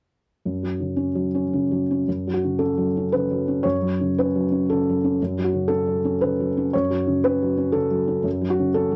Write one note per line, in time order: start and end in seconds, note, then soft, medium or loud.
0.45 2.03 F#2 soft
0.63 0.91 F#3 soft
0.80 1.08 C#3 soft
0.96 1.25 C#4 soft
1.15 1.44 F#3 soft
1.35 1.63 C#4 soft
1.53 1.82 C#3 soft
1.71 2.00 F#3 soft
1.91 2.08 C#4 soft
2.08 3.61 F#2 soft
2.27 2.54 F#3 soft
2.34 2.60 F#4 medium
2.44 2.71 C#3 soft
2.59 2.88 C#4 soft
2.59 3.12 A4 medium
2.78 3.05 F#3 soft
2.97 3.24 C#4 soft
3.12 3.41 C#3 soft
3.12 3.64 B4 medium
3.31 3.58 F#3 soft
3.48 3.75 C#4 soft
3.63 5.16 F#2 soft
3.63 4.16 C#5 medium
3.82 4.09 F#3 soft
4.00 4.27 C#3 soft
4.18 4.46 C#4 soft
4.18 4.69 B4 medium
4.35 4.62 F#3 soft
4.52 4.79 C#4 soft
4.70 4.97 C#3 soft
4.70 5.20 A4 medium
4.89 5.15 F#3 soft
5.04 5.20 C#4 soft
5.22 6.70 F#2 soft
5.38 5.64 F#3 soft
5.44 5.70 F#4 medium
5.53 5.80 C#3 soft
5.68 5.97 C#4 soft
5.68 6.20 A4 medium
5.87 6.14 F#3 soft
6.05 6.32 C#4 soft
6.21 6.49 C#3 soft
6.21 6.72 B4 medium
6.40 6.67 F#3 soft
6.57 6.83 C#4 soft
6.73 8.22 F#2 soft
6.73 7.24 C#5 medium
6.90 7.17 F#3 soft
7.07 7.34 C#3 soft
7.24 7.52 C#4 soft
7.24 7.75 B4 medium
7.42 7.69 F#3 soft
7.58 7.85 C#4 soft
7.72 8.01 C#3 soft
7.72 8.24 A4 medium
7.90 8.18 F#3 soft
8.08 8.25 C#4 soft
8.24 8.96 F#2 soft
8.41 8.69 F#3 soft
8.50 8.76 F#4 medium
8.59 8.86 C#3 soft
8.74 8.96 C#4 soft
8.74 8.96 A4 medium
8.91 8.96 F#3 soft